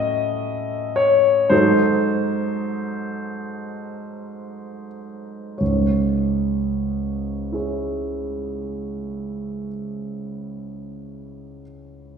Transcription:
0.00 1.48 A2 soft
0.00 1.48 F#3 soft
0.00 1.48 C#4 soft
0.00 1.48 A4 soft
0.00 0.95 D#5 medium
0.00 1.54 E5 medium
0.96 1.52 C#5 medium
1.49 5.55 G#2 soft
1.49 5.55 F#3 soft
1.49 5.55 D#4 soft
1.49 5.56 A4 soft
1.49 4.86 C5 medium
5.58 9.68 C#2 soft
5.58 9.68 G#2 soft
5.58 7.54 C#5 soft
7.52 11.60 E4 soft
7.52 11.62 G#4 soft
7.52 11.63 C#5 soft

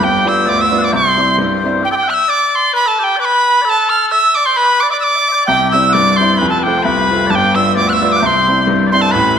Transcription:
0.00 0.88 G1 medium
0.00 0.45 G2 medium
0.00 0.46 G4 medium
0.00 0.29 G5 medium
0.25 0.62 G3 medium
0.25 0.62 B3 soft
0.25 0.63 F4 medium
0.25 0.51 E6 medium
0.46 0.91 D2 medium
0.46 0.58 D5 medium
0.46 0.63 D6 medium
0.58 0.78 E5 medium
0.58 0.86 E6 medium
0.71 0.88 G3 medium
0.71 0.88 B3 soft
0.71 0.89 F4 medium
0.78 0.92 D5 medium
0.78 0.82 F#5 medium
0.84 0.94 D6 medium
0.92 1.80 C2 medium
0.92 1.37 C3 medium
0.92 1.83 C5 medium
0.92 1.36 C6 medium
1.17 1.54 G3 soft
1.17 1.54 C4 soft
1.17 1.54 E4 medium
1.38 1.83 G2 medium
1.64 1.80 G3 soft
1.64 1.80 C4 soft
1.64 1.81 E4 soft
1.83 1.92 G4 medium
1.83 1.90 G5 medium
1.92 2.03 G4 medium
1.92 1.95 A4 medium
1.92 1.97 G5 medium
1.98 2.11 G5 medium
2.03 2.08 F#5 medium
2.08 2.28 E5 medium
2.08 2.15 F#6 medium
2.14 2.31 E6 loud
2.28 2.73 D5 medium
2.28 2.49 D6 loud
2.49 2.57 D6 medium
2.55 2.75 C6 loud
2.73 2.86 B4 medium
2.73 2.89 B5 loud
2.86 2.99 A4 medium
2.86 3.00 A5 medium
2.99 3.16 G4 medium
2.99 3.05 A5 medium
3.04 3.20 G5 medium
3.16 3.62 B4 medium
3.16 3.20 D5 medium
3.20 3.26 D6 loud
3.25 3.65 B5 loud
3.62 4.12 A4 loud
3.62 3.65 D5 loud
3.62 3.71 B5 medium
3.70 3.91 A5 loud
3.89 4.09 F6 medium
4.09 4.37 E5 medium
4.09 4.36 E6 loud
4.35 4.46 D5 medium
4.35 4.47 D6 loud
4.45 4.57 C5 medium
4.45 4.58 C6 loud
4.56 4.83 B4 medium
4.56 4.82 B5 loud
4.80 4.90 D5 medium
4.80 4.90 D6 medium
4.90 5.03 D5 medium
4.90 4.93 E5 medium
4.90 4.99 D6 medium
5.00 5.16 D5 medium
5.00 5.44 D6 loud
5.00 5.05 E6 loud
5.16 5.28 D5 medium
5.16 5.19 E5 soft
5.28 5.34 C5 medium
5.28 5.32 E5 medium
5.34 5.48 D5 medium
5.47 6.35 C2 medium
5.47 5.93 C3 medium
5.47 5.73 G4 medium
5.47 5.71 G5 loud
5.71 6.10 G3 medium
5.71 6.10 C4 soft
5.71 6.11 E4 soft
5.71 5.90 E5 medium
5.71 5.94 E6 medium
5.90 5.94 F#5 medium
5.90 6.18 D6 loud
5.94 6.39 G2 medium
5.94 6.18 D5 medium
6.16 6.36 G3 soft
6.16 6.34 C5 medium
6.16 6.39 C6 loud
6.21 6.36 C4 soft
6.21 6.37 E4 medium
6.34 6.38 D5 medium
6.34 6.49 B5 medium
6.38 7.28 F1 medium
6.38 6.85 F2 medium
6.38 6.51 B4 medium
6.50 6.59 A4 medium
6.50 6.65 A5 medium
6.59 6.63 B4 medium
6.59 6.84 G5 medium
6.63 7.02 A3 soft
6.63 7.02 C4 soft
6.63 7.02 F4 medium
6.63 6.78 G4 medium
6.78 6.84 C5 medium
6.83 7.29 C2 medium
6.83 7.27 B4 medium
6.83 7.32 B5 loud
7.10 7.27 A3 medium
7.10 7.27 C4 soft
7.10 7.27 F4 medium
7.27 7.75 G2 medium
7.27 7.31 D5 medium
7.27 7.36 A5 medium
7.31 8.18 G1 medium
7.31 7.55 G4 medium
7.35 7.57 G5 loud
7.55 7.92 G3 soft
7.55 7.92 B3 soft
7.55 7.92 F4 medium
7.55 7.75 E5 medium
7.55 7.76 E6 medium
7.75 8.20 D2 medium
7.75 7.87 D5 medium
7.75 7.91 D6 medium
7.87 8.16 E5 medium
7.87 7.94 F#6 medium
7.93 8.13 E6 medium
8.01 8.18 G3 medium
8.01 8.18 B3 soft
8.01 8.18 F4 medium
8.12 8.22 D6 medium
8.16 8.87 C5 medium
8.16 8.20 F#5 medium
8.22 9.09 C2 medium
8.22 8.66 C3 medium
8.22 8.27 D6 medium
8.26 8.68 C6 medium
8.47 8.84 G3 soft
8.47 8.84 C4 soft
8.47 8.84 E4 soft
8.67 9.12 G2 medium
8.87 9.01 C5 medium
8.87 8.90 D5 medium
8.92 9.09 G3 medium
8.92 9.09 C4 soft
8.92 9.09 E4 medium
8.92 9.03 C6 medium
9.01 9.11 A4 medium
9.01 9.13 A5 medium
9.11 9.39 A1 medium
9.11 9.39 A2 medium
9.11 9.37 B4 medium
9.11 9.38 B5 medium

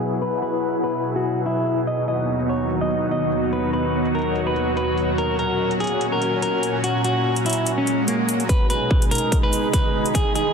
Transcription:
0.00 5.14 B2 medium
0.00 1.84 F#3 medium
0.00 1.84 E4 medium
0.00 1.87 E4 medium
0.00 0.14 G#4 medium
0.00 1.83 G#4 medium
0.00 2.93 B4 medium
0.00 2.92 F#5 medium
0.00 2.98 G#5 medium
0.00 open hi-hat medium
0.22 0.39 B4 medium
0.22 closed hi-hat medium
0.42 0.76 B4 medium
0.42 closed hi-hat soft
0.74 closed hi-hat soft
0.84 1.09 B4 medium
0.84 closed hi-hat soft
0.88 closed hi-hat medium
0.91 closed hi-hat medium
1.04 closed hi-hat medium
1.16 1.40 F#4 medium
1.25 closed hi-hat soft
1.46 1.80 E4 medium
1.46 closed hi-hat medium
1.67 open hi-hat medium
1.87 5.15 D#2 medium
1.87 5.18 D#3 medium
1.87 8.45 F#3 medium
1.87 5.15 D#4 medium
1.87 8.45 F#4 medium
1.87 2.04 D#5 medium
1.87 closed hi-hat medium
1.93 5.18 B3 medium
2.08 2.42 D#5 medium
2.08 closed hi-hat soft
2.17 9.82 F#4 medium
2.17 5.93 D#5 medium
2.26 9.65 C#5 medium
2.40 closed hi-hat soft
2.49 2.75 C#5 medium
2.49 closed hi-hat soft
2.53 closed hi-hat medium
2.56 closed hi-hat medium
2.70 closed hi-hat medium
2.81 3.06 D#5 medium
2.91 closed hi-hat soft
3.11 3.45 D#5 medium
3.11 closed hi-hat medium
3.32 open hi-hat medium
3.53 3.70 B4 medium
3.53 closed hi-hat medium
3.73 4.07 B4 medium
3.73 closed hi-hat soft
4.05 closed hi-hat soft
4.15 4.40 A#4 medium
4.15 closed hi-hat soft
4.19 closed hi-hat medium
4.22 closed hi-hat medium
4.35 closed hi-hat medium
4.47 4.71 B4 medium
4.56 closed hi-hat soft
4.77 5.11 B4 medium
4.77 closed hi-hat medium
4.98 open hi-hat medium
5.18 8.46 A#2 medium
5.18 8.46 C#4 medium
5.18 5.35 A#4 medium
5.18 closed hi-hat medium
5.27 9.50 G#5 medium
5.39 5.73 A#4 medium
5.39 closed hi-hat soft
5.68 8.49 A#5 medium
5.68 closed hi-hat soft
5.80 6.06 G#4 medium
5.80 closed hi-hat soft
5.84 closed hi-hat medium
5.87 closed hi-hat medium
6.01 closed hi-hat medium
6.12 6.37 A#4 medium
6.22 closed hi-hat soft
6.42 6.76 A#4 medium
6.42 closed hi-hat medium
6.63 open hi-hat medium
6.84 7.01 F#4 medium
6.84 closed hi-hat medium
7.04 7.38 F#4 medium
7.04 closed hi-hat soft
7.36 closed hi-hat soft
7.46 7.71 E4 medium
7.46 closed hi-hat soft
7.50 closed hi-hat medium
7.53 closed hi-hat medium
7.66 closed hi-hat medium
7.66 swell medium
7.78 8.02 C#4 medium
7.87 closed hi-hat medium
8.08 8.42 A#3 medium
8.08 closed hi-hat medium
8.29 open hi-hat medium
8.40 closed hi-hat soft
8.49 10.53 B2 medium
8.49 10.53 G#3 medium
8.49 10.53 D#4 medium
8.49 10.53 G#4 medium
8.49 10.53 G#4 loud
8.49 8.66 B4 medium
8.49 kick medium
8.49 closed hi-hat medium
8.49 riser medium
8.57 10.53 B5 medium
8.70 9.04 B4 medium
8.70 closed hi-hat medium
8.81 10.53 D#5 medium
8.91 kick medium
9.02 closed hi-hat medium
9.11 9.37 A#4 medium
9.11 closed hi-hat soft
9.15 closed hi-hat medium
9.18 closed hi-hat medium
9.32 kick medium
9.32 closed hi-hat medium
9.43 9.68 B4 medium
9.53 closed hi-hat medium
9.53 shaker soft
9.73 10.07 B4 medium
9.73 kick loud
9.73 closed hi-hat medium
10.06 closed hi-hat soft
10.15 10.32 G#4 medium
10.15 kick medium
10.15 closed hi-hat medium
10.35 10.53 G#4 medium
10.35 closed hi-hat soft

